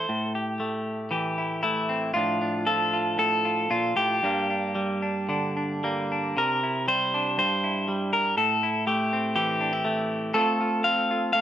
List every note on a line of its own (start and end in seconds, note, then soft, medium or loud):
0.00 0.38 A3 medium
0.00 0.33 A4 medium
0.00 0.34 C5 medium
0.09 2.12 A2 medium
0.35 1.10 G4 soft
0.60 1.62 A3 medium
1.11 2.11 E3 medium
1.11 2.15 G4 soft
1.38 1.62 E4 soft
1.63 2.12 A3 medium
1.63 2.13 E4 medium
1.89 2.12 C4 soft
2.14 3.17 A2 medium
2.14 2.66 F3 soft
2.14 2.41 D4 soft
2.14 2.92 F4 loud
2.41 4.24 D4 soft
2.67 4.23 F3 medium
2.67 3.18 A4 loud
2.93 3.44 F4 soft
3.18 3.70 A2 medium
3.18 3.96 A4 loud
3.45 3.69 F4 soft
3.70 3.96 A#2 medium
3.70 4.23 F4 medium
3.96 4.22 A2 medium
3.96 6.37 G4 medium
4.23 6.37 G2 medium
4.23 4.74 G3 soft
4.23 5.83 A#3 soft
4.23 4.49 D4 soft
4.50 5.01 D4 soft
4.75 5.82 G3 medium
5.02 5.28 D4 soft
5.29 6.34 D3 medium
5.29 5.55 D4 soft
5.57 6.11 D4 soft
5.84 6.34 G3 medium
5.84 6.37 A#3 medium
6.12 6.63 D4 soft
6.37 7.39 C3 medium
6.37 6.88 A#4 loud
6.63 7.63 E4 soft
6.88 7.87 G3 medium
6.88 7.37 C5 loud
7.14 8.35 D4 medium
7.38 8.37 G2 medium
7.38 8.13 C5 medium
7.64 8.35 E4 soft
7.88 8.35 G3 medium
8.13 8.37 A#4 loud
8.37 10.32 A2 medium
8.37 8.87 A4 medium
8.63 9.60 E4 medium
8.87 9.84 A3 medium
8.87 9.34 G4 medium
9.13 10.33 C4 medium
9.36 10.32 E3 medium
9.36 10.35 G4 medium
9.61 9.73 D4 soft
9.73 10.34 E4 soft
9.85 10.35 A3 medium
10.34 11.34 A3 medium
10.34 10.83 C4 medium
10.34 10.59 F4 medium
10.34 11.34 A4 loud
10.61 11.10 F4 soft
10.84 11.41 C4 medium
10.84 11.32 F5 loud
11.11 11.41 F4 medium
11.33 11.41 A3 medium
11.33 11.41 F5 loud